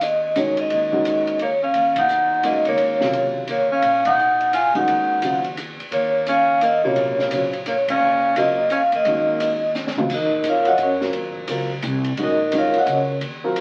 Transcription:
Already playing: upright bass D#2
0.01 vibraphone D#5, hi-hat pedal, ride
0.36 upright piano D#3 G#3 C#4 F#4, vibraphone C#5, hi-hat pedal, ride
0.57 vibraphone D#5, muted upright bass stroke, ride
0.70 upright bass D#2, ride
0.92 upright piano D#3 G#3 C#4 F#4
1.05 hi-hat pedal, ride
1.27 ride
1.39 tenor saxophone A#3, vibraphone C#5, ride
1.63 tenor saxophone C#4, vibraphone F5
1.74 upright bass D#2, ride
1.96 tenor saxophone D#4, vibraphone F#5, kick, ride
2.08 hi-hat pedal
2.43 upright piano D#3 G#3 C#4 F#4, tenor saxophone A#3, vibraphone D#5, hi-hat pedal, ride
2.65 upright bass D2, tenor saxophone A#3, vibraphone C#5, ride
2.77 upright bass D#2, ride
3.01 upright piano C3 C#3 F#3 F4, snare
3.13 ride
3.47 tenor saxophone A#3, vibraphone C#5, hi-hat pedal, ride
3.71 tenor saxophone C#4, vibraphone F5
3.82 upright bass A#1, ride
4.05 tenor saxophone D#4, vibraphone F#5, kick, ride
4.18 hi-hat pedal
4.41 ride
4.53 tenor saxophone F4, vibraphone G#5, hi-hat pedal, ride
4.74 upright bass E2, upright piano D#3 G#3 C#4 F#4, tenor saxophone D#4, vibraphone F#5, ride
4.87 upright bass D#2, ride
5.22 upright piano C#3 F#3 C4 F4, hi-hat pedal, ride
5.44 ride
5.57 hi-hat pedal, ride
5.78 muted upright bass stroke, ride
5.91 upright bass D#2, tenor saxophone A#3, vibraphone C#5, ride
6.27 tenor saxophone C#4, vibraphone F5, hi-hat pedal, ride
6.61 tenor saxophone A#3, vibraphone D#5, hi-hat pedal, ride
6.83 upright piano C3 C#3 F#3 F4, tenor saxophone A#3, vibraphone C#5
6.96 upright bass A#1, ride
7.19 snare
7.31 upright piano C#3 F#3 C4 F4, hi-hat pedal, ride
7.53 ride
7.66 tenor saxophone A#3, vibraphone C#5, hi-hat pedal, ride
7.88 tenor saxophone C#4, vibraphone F5, kick, ride
8.00 upright bass F#1
8.36 upright piano C#3 F#3 C4 F4, tenor saxophone A#3, vibraphone D#5, hi-hat pedal, ride
8.70 tenor saxophone C#4, vibraphone F5, hi-hat pedal, ride
8.92 upright bass E2, tenor saxophone A#3, vibraphone D#5, ride
9.04 upright bass D#2, upright piano D#3 G#3 C#4 F#4, ride
9.40 hi-hat pedal, ride
9.75 snare, hi-hat pedal
9.87 snare
9.96 upright bass C#2, upright piano C#3 F#3 C4 F4, mid tom
10.09 upright bass D#2, kick, crash
10.14 vibraphone D#4 F#4 A#4 D#5
10.31 kick
10.43 upright bass F2, hi-hat pedal, ride
10.49 vibraphone F4 A#4 C#5 F5
10.65 vibraphone F#4 C#5 D#5 F#5, ride
10.78 upright bass F#2, hi-hat pedal, ride
10.83 vibraphone C#4 F#4 A#4 C#5
11.00 upright piano F#3 C4 F4 A#4, snare
11.13 upright bass D#2, ride
11.35 muted upright bass stroke, kick
11.48 upright bass C#2, upright piano F#3 C4 F4 A#4, hi-hat pedal, ride
11.82 upright bass C2, hi-hat pedal, ride
12.04 ride
12.17 upright bass A#1, upright piano D#3 G#3 C#4 F#4, ride
12.23 vibraphone D#4 F#4 A#4 D#5
12.52 upright bass F2, upright piano D#3 G#3 C#4 F#4, hi-hat pedal, ride
12.58 vibraphone F4 A#4 C#5 F5
12.74 ride
12.78 vibraphone F#4 C#5 D#5 F#5
12.86 upright bass C#2, hi-hat pedal, ride
12.92 vibraphone C#4 F#4 A#4 C#5
13.21 upright bass D#2, ride
13.44 upright piano F#3 C4 F4 A#4
13.56 upright bass F2, ride

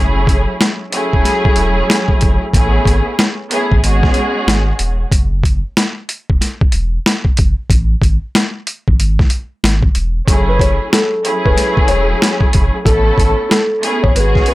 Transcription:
Already playing: sub bass F#1, string section F#3 A3 C#4 E4 G#4
0.27 kick, closed hi-hat
0.61 snare, closed hi-hat
0.91 string section F#3 A3 C#4 E4 G#4, closed hi-hat
1.13 sub bass E1, kick
1.25 snare, closed hi-hat
1.45 kick
1.56 sub bass E1, closed hi-hat
1.90 snare, closed hi-hat
2.08 kick
2.21 sub bass F#1, kick, closed hi-hat
2.52 sub bass A1, string section A3 B3 C#4 E4 G#4, kick, closed hi-hat
2.85 sub bass G#1, kick, closed hi-hat
3.19 snare, closed hi-hat
3.49 string section A3 B3 C#4 E4 G#4, closed hi-hat
3.72 sub bass A1, kick
3.82 sub bass G#1, string section G#3 B3 C#4 F#4 G#4, closed hi-hat
4.03 kick, snare
4.14 closed hi-hat
4.47 sub bass G#1, snare, closed hi-hat
4.79 sub bass E1, closed hi-hat
5.12 sub bass F#1, kick, closed hi-hat
5.44 kick, closed hi-hat
5.77 snare, closed hi-hat
6.09 closed hi-hat
6.30 sub bass E1, kick
6.41 snare, closed hi-hat
6.61 kick
6.72 sub bass E1, closed hi-hat
7.06 snare, closed hi-hat
7.25 kick
7.37 sub bass F#1, kick, closed hi-hat
7.70 sub bass A1, kick, closed hi-hat
8.02 sub bass G#1, kick, closed hi-hat
8.35 snare, closed hi-hat
8.67 closed hi-hat
8.88 sub bass A1, kick
8.99 sub bass G#1, closed hi-hat
9.19 kick, snare
9.30 closed hi-hat
9.64 sub bass G#1, snare, closed hi-hat
9.83 kick
9.95 sub bass E1, closed hi-hat
10.27 sub bass F#1, string section F#3 A3 C#4 E4 G#4, kick, closed hi-hat
10.48 upright piano B4
10.60 upright piano C#5, kick, closed hi-hat
10.92 upright piano A4, snare, closed hi-hat
11.23 string section F#3 A3 C#4 E4 G#4, closed hi-hat
11.44 sub bass E1, upright piano B4, kick
11.57 snare, closed hi-hat
11.77 kick
11.88 sub bass E1, upright piano C#5, closed hi-hat
12.22 snare, closed hi-hat
12.41 kick
12.53 sub bass F#1, kick, closed hi-hat
12.85 sub bass A1, string section A3 B3 C#4 E4 A4, upright piano A4, kick, closed hi-hat
13.18 sub bass G#1, kick, closed hi-hat
13.49 upright piano A4, snare, closed hi-hat
13.81 string section A3 B3 C#4 E4 G#4, closed hi-hat
14.03 sub bass A1, upright piano C#5, kick
14.14 sub bass G#1, string section G#3 B3 C#4 F#4 G#4, upright piano B4, closed hi-hat
14.35 kick, snare
14.46 upright piano B4, closed hi-hat

